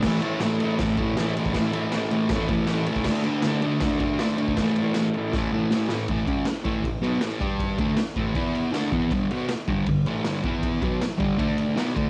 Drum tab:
CC |x---------------|----------------|x---------------|----------------|
RD |--x-x-x-x-x-x-x-|x-x-x-x-x-x-x-x-|--x-x-x-x-x-x-x-|x-x-x-x---------|
SD |o---o---o---o---|o---o---o---o---|o---o---o---o---|o---o---o---o-o-|
BD |o-------o-o----o|o-------o-o----o|o-------o-o----o|o-------o-------|

CC |----------------|----------------|----------------|----------------|
RD |x-x-x-x-x-x-x-x-|x-x-x-x-x-x-x-x-|x-x-x-x-x-x-x-x-|x-x-x-x-x-x-x-x-|
SD |----o-------o---|----o-------o---|----o-------o---|----o-------o---|
BD |o-o---o-o-----o-|o-o---o-o-----o-|o-----o-o-----o-|o-o---o-o-----o-|